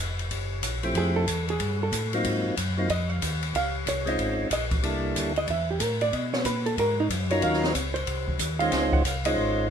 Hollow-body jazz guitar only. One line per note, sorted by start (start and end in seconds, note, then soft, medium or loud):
0.98 1.16 G#4 medium
1.16 1.46 A4 loud
1.50 1.79 G#4 medium
1.83 2.12 A4 medium
2.90 3.10 D#5 medium
3.10 3.54 F5 medium
3.56 3.75 F5 medium
3.89 4.09 C#5 medium
4.09 4.52 D#5 medium
4.53 4.65 D#5 medium
5.38 5.49 D#5 loud
5.50 5.69 E5 loud
5.71 5.82 G4 medium
5.82 6.02 A#4 medium
6.02 6.15 D5 loud
6.15 6.33 D#5 loud
6.34 6.45 C#5 loud
6.46 6.66 B4 medium
6.66 6.78 A4 medium
6.79 6.99 A#4 loud
7.00 7.07 D#4 medium
7.31 7.43 C#5 medium
7.43 7.63 F5 loud
7.63 7.75 D#5 medium
7.75 7.95 C#5 medium
7.94 8.36 C5 medium
8.59 8.73 F5 medium
8.73 8.93 G#5 loud
8.93 9.08 F#5 medium
9.08 9.26 F5 medium
9.26 9.67 D#5 loud